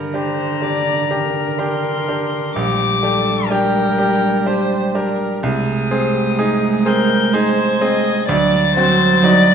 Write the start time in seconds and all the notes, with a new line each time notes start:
Already playing: G2 D3 A#4
0.13 D4 G4 C5 A#5
0.62 D4 G4 D5
1.11 D4 G4 A#4
1.58 D4 G4 C6
2.09 D4 G4
2.55 A#1 G3 G4 D6
3.03 D4 G4 A4
3.49 D4 G4 A#4 G5
3.98 D4 G4
4.46 D4 G4 C5
4.95 D4 G4 A#4
5.43 C2 G#3 G#4 D#6
5.91 C4 G4 G#4
6.39 D#4 G#4
6.86 C4 G#4 A#4 G6
7.33 D#4 G#4 C5 G#6
7.81 C4 G#4 D#5
8.29 D2 F#3 D5 A6
8.76 C4 F#4 C5
9.23 D#4 F#4 D5